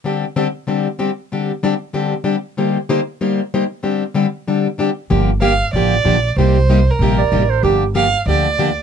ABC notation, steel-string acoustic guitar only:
X:1
M:4/4
L:1/8
Q:"Swing" 1/4=190
K:Dphr
V:1 name="Steel-string acoustic guitar"
[D,G,CDG] z [D,G,CDG] z [D,G,CDG] z [D,G,CDG] z | [D,G,CDG] z [D,G,CDG] z [D,G,CDG] z [D,G,CDG] z | [D,G,B,EGc] z [D,G,B,EGc] z [D,G,B,EGc] z [D,G,B,EGc] z | [D,G,CDG] z [D,G,CDG] z [D,G,CDG] z [D,G,CDG] z |
[D,F,B,DG] z [D,F,B,DG] z [D,F,B,DG] z [D,F,B,DG] z | [C,G,B,EG] z [C,G,B,EG] z [C,G,B,EG] z [C,G,B,EG] z | [D,F,B,DG] z [D,F,B,DG] z [D,F,B,DG] z [D,F,B,DG] z |]